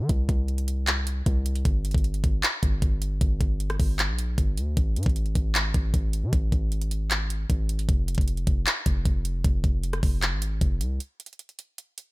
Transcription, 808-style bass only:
0.09 0.28 C2 loud
0.29 1.22 C2 loud
1.26 1.64 C2 loud
1.65 1.93 G1 loud
1.95 2.23 G1 loud
2.24 2.42 G1 loud
2.63 2.81 G1 loud
2.82 3.20 G1 loud
3.21 3.40 G1 loud
3.41 3.78 G1 loud
3.80 4.10 G1 loud
4.09 4.37 A#1 loud
4.38 4.59 G1 loud
4.58 4.76 D2 loud
4.77 4.98 G#1 loud
4.96 5.06 G#2 loud
5.06 5.34 G#1 loud
5.35 5.73 G#1 loud
5.74 5.93 G#1 loud
5.94 6.25 G#1 loud
6.23 6.32 C3 loud
6.33 6.52 G#1 loud
6.52 7.46 G#1 loud
7.50 7.87 G#1 loud
7.89 8.17 F1 loud
8.18 8.46 F1 loud
8.47 8.66 F1 loud
8.86 9.05 F1 loud
9.05 9.43 F1 loud
9.44 9.63 F1 loud
9.64 10.01 F1 loud
10.03 10.34 F1 loud
10.32 10.60 G#1 loud
10.61 10.82 F1 loud
10.81 10.99 C2 loud

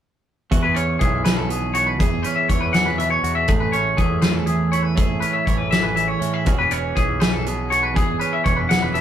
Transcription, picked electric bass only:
0.52 0.96 E2 medium
1.01 2.00 B1 medium
2.00 2.22 E2 medium
2.49 3.16 E2 medium
3.23 3.46 E2 medium
3.49 3.93 A1 medium
3.98 4.97 E2 medium
4.97 5.20 A1 medium
5.47 6.14 A1 medium
6.21 6.44 A2 medium
6.47 6.91 E1 medium
6.97 7.97 B1 medium
7.97 8.18 E1 medium
8.46 9.01 E1 medium

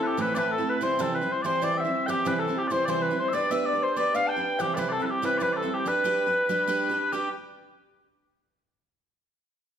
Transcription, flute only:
0.00 0.20 A4 medium
0.19 0.36 B4 medium
0.36 0.49 B4 medium
0.50 0.66 A4 medium
0.68 0.81 B4 medium
0.82 1.11 C5 medium
1.14 1.32 B4 medium
1.31 1.44 C5 medium
1.45 1.64 C5 medium
1.62 1.75 D5 medium
1.75 1.81 G5 medium
1.80 2.09 E5 medium
2.08 2.40 G4 medium
2.39 2.56 A4 medium
2.56 2.62 G4 medium
2.71 2.87 C5 loud
2.89 3.04 C5 medium
3.02 3.19 B4 medium
3.20 3.36 C5 medium
3.34 3.52 D5 medium
3.65 3.84 D5 loud
3.83 3.96 C5 medium
3.96 4.16 D5 loud
4.15 4.29 F5 medium
4.27 4.61 G5 loud
4.27 4.32 A5 medium
4.59 4.78 G4 medium
4.76 4.93 B4 medium
4.92 5.09 A4 medium
5.09 5.22 G4 medium
5.23 5.40 B4 medium
5.42 5.54 B4 medium
5.56 5.72 A4 medium
5.73 5.89 G4 medium
5.88 6.82 B4 medium
7.13 7.29 G4 medium

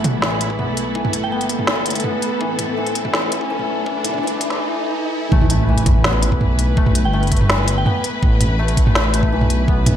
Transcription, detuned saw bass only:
0.00 0.60 A1 loud
0.59 1.25 B1 medium
1.23 2.03 G1 medium
2.41 3.51 A1 loud
3.50 4.15 B1 medium
4.14 4.59 G1 medium
5.32 6.42 A1 loud
6.41 7.06 B1 medium
7.05 7.85 G1 loud
8.23 9.33 A1 loud
9.32 9.97 B1 medium

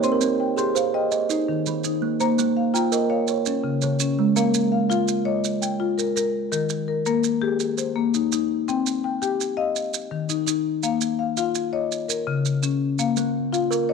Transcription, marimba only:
0.04 0.40 C4 medium
0.04 0.57 C6 medium
0.40 0.93 G5 medium
0.58 0.94 G4 medium
0.58 1.12 C6 medium
0.76 1.30 F5 medium
0.94 1.12 D#5 medium
0.94 1.30 G5 medium
1.31 1.84 D#4 medium
1.48 1.85 D#3 medium
1.85 2.21 D#4 medium
2.21 2.57 A#3 medium
2.21 2.73 A#5 medium
2.57 3.09 F5 medium
2.74 3.10 F4 medium
2.74 3.28 A#5 medium
2.92 3.46 D#5 medium
3.10 3.28 C#5 medium
3.10 3.46 F5 medium
3.46 3.99 C#4 medium
3.64 4.00 C#3 medium
3.82 4.36 C#5 medium
4.00 4.36 C#4 medium
4.36 4.72 A#3 medium
4.36 4.71 F5 medium
4.72 4.88 F5 medium
4.89 5.26 F4 medium
4.89 5.44 F5 medium
5.25 5.62 C#5 medium
5.25 5.80 D#5 medium
5.62 6.16 G5 medium
5.80 6.16 F4 medium
5.98 6.15 A#4 medium
6.16 6.50 A#4 medium
6.52 6.88 D#3 medium
6.52 6.87 A#4 medium
6.88 7.05 A#4 medium
7.06 7.42 A#3 medium
7.06 7.60 A#4 medium
7.41 7.78 G4 medium
7.41 7.96 G#4 medium
7.77 8.32 C5 medium
7.96 8.32 A#3 medium
8.14 8.31 D#4 medium
8.32 8.68 D#4 medium
8.68 9.04 C4 medium
8.68 9.03 G5 medium
9.04 9.21 G5 medium
9.22 9.58 G4 medium
9.22 9.76 G5 medium
9.57 9.75 D#5 medium
9.57 9.93 F5 medium
10.11 10.47 D#3 medium
10.29 10.45 D#4 medium
10.46 10.83 D#4 medium
10.83 11.19 A#3 medium
10.83 11.18 F5 medium
11.19 11.36 F5 medium
11.37 11.73 F4 medium
11.37 11.91 F5 medium
11.73 11.91 C#5 medium
11.73 12.09 D#5 medium
12.08 12.63 A#4 medium
12.27 12.63 C#3 medium
12.63 12.99 C#4 medium
12.99 13.35 A#3 medium
12.99 13.51 F5 medium
13.53 13.89 F4 medium
13.53 13.93 F5 medium
13.89 13.93 C#5 medium
13.89 13.93 D#5 medium

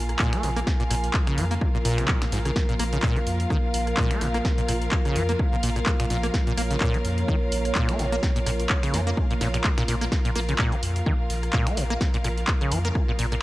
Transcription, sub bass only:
0.00 0.15 A#1 medium
0.43 0.62 A#1 medium
0.91 1.10 A#1 medium
1.38 1.57 F2 medium
1.85 2.04 A#1 medium
2.32 2.51 A#1 medium
2.80 2.99 A#1 medium
3.27 3.46 F2 medium
3.74 3.93 A#1 medium
4.21 4.40 A#1 medium
4.69 4.88 A#1 loud
5.16 5.35 F2 medium
5.63 5.82 A#1 medium
6.10 6.29 A#1 medium
6.58 6.77 A#1 loud
7.05 7.24 F2 medium
7.52 7.71 A#1 medium
7.99 8.18 A#1 medium
8.47 8.66 A#1 loud
8.94 9.13 F2 medium
9.41 9.60 A#1 medium
9.88 10.07 A#1 medium
10.36 10.55 A#1 loud
10.83 11.02 F2 medium
11.30 11.49 A#1 medium
11.77 11.96 A#1 medium
12.24 12.44 A#1 loud
12.72 12.91 F2 medium
13.19 13.38 A#1 medium

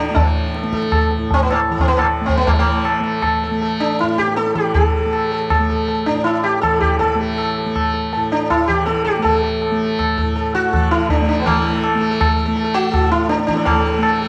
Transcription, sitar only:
0.00 0.14 D4 medium
0.15 0.69 A3 medium
0.56 0.72 A4 soft
0.73 0.91 A4 soft
0.95 1.12 A4 soft
1.34 1.42 C4 medium
1.43 1.52 B3 medium
1.52 1.60 A3 medium
1.72 1.89 A4 soft
1.81 1.88 C4 medium
1.88 1.98 B3 loud
1.97 2.07 A3 medium
2.26 2.36 C4 medium
2.37 2.47 B3 medium
2.47 2.52 A3 medium
2.53 2.59 G3 medium
2.59 3.01 A3 medium
2.66 2.83 A4 soft
3.03 3.21 A4 soft
3.24 3.41 A4 soft
3.43 3.60 A4 soft
3.62 3.79 A4 soft
3.80 4.00 D4 medium
4.00 4.19 E4 medium
4.18 4.36 G4 medium
4.36 4.55 A4 medium
4.55 4.74 G4 medium
4.74 5.27 A4 medium
5.32 5.49 A4 soft
5.51 5.68 A4 soft
5.69 5.87 A4 soft
5.88 6.06 A4 soft
6.06 6.24 D4 medium
6.24 6.44 E4 medium
6.43 6.61 G4 medium
6.61 6.80 A4 medium
6.80 6.99 G4 medium
6.99 7.19 A4 medium
7.21 7.37 A4 soft
7.38 7.55 A4 soft
7.93 8.11 A4 soft
8.14 8.31 A4 soft
8.32 8.50 D4 medium
8.50 8.70 E4 medium
8.68 8.85 G4 medium
8.86 9.04 A4 medium
9.05 9.22 G4 medium
9.22 9.42 A4 medium
9.43 9.60 A4 soft
10.18 10.34 A4 soft
10.36 10.53 A4 soft
10.55 10.91 F#4 medium
10.55 10.71 A4 soft
10.73 10.90 A4 soft
10.91 11.08 E4 medium
10.91 11.08 A4 soft
11.10 11.27 D4 medium
11.10 11.27 A4 soft
11.28 11.39 D4 medium
11.28 11.45 A4 soft
11.40 11.46 B3 medium
11.46 11.98 A3 medium
11.56 11.64 A4 soft
11.65 11.71 A4 soft
11.73 11.90 A4 soft
12.01 12.10 A4 soft
12.11 12.19 A4 soft
12.20 12.27 A4 soft
12.29 12.35 A4 soft
12.36 12.44 A4 soft
12.46 12.54 A4 soft
12.55 12.63 A4 soft
12.64 12.81 A4 soft
12.74 13.11 F#4 loud
12.82 12.90 A4 soft
12.91 13.00 A4 soft
13.01 13.18 A4 soft
13.11 13.29 E4 loud
13.19 13.36 A4 soft
13.29 13.45 D4 medium
13.37 13.54 A4 soft
13.47 13.64 D4 medium
13.55 13.73 A4 soft
13.65 14.16 A3 medium
13.75 13.83 A4 soft
13.85 13.92 A4 soft
13.94 14.01 A4 soft
14.02 14.12 A4 soft
14.13 14.20 A4 soft
14.22 14.28 A4 soft

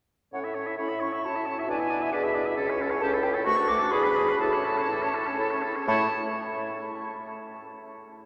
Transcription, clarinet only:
0.34 0.46 C#4 soft
0.44 0.57 E4 soft
0.55 0.68 C#4 soft
0.67 0.78 E4 soft
0.78 0.90 C#4 soft
0.89 1.02 E4 soft
1.01 1.14 C#4 soft
1.12 1.23 E4 soft
1.24 1.37 C#4 soft
1.35 1.48 E4 soft
1.46 1.59 C#4 soft
1.57 1.67 E4 soft
1.67 1.80 D4 soft
1.78 1.91 E4 soft
1.89 2.01 D4 soft
2.00 2.10 E4 soft
2.11 2.24 D4 soft
2.23 2.36 E4 soft
2.34 2.48 D4 soft
2.46 2.56 E4 medium
2.57 2.70 C#4 medium
2.68 2.81 E4 soft
2.79 2.93 C#4 medium
2.91 3.01 E4 medium
3.02 3.16 C#4 medium
3.14 3.26 E4 medium
3.25 3.36 C#4 medium
3.35 3.46 E4 medium
3.47 3.59 A3 medium
3.58 3.71 D4 medium
3.70 3.82 A3 medium
3.81 3.93 D4 medium
3.93 4.06 E4 medium
4.05 4.19 D4 medium
4.17 4.31 E4 medium
4.29 4.40 D4 medium
4.40 4.54 E4 medium
4.52 4.66 C#4 soft
4.65 4.78 E4 soft
4.77 4.88 C#4 soft
4.89 5.03 E4 soft
5.02 5.15 C#4 soft
5.14 5.27 E4 soft
5.26 5.38 C#4 medium
5.39 5.53 E4 medium
5.52 5.65 C#4 soft
5.64 5.78 E4 soft
5.76 5.87 C#4 soft
5.88 6.08 E4 medium

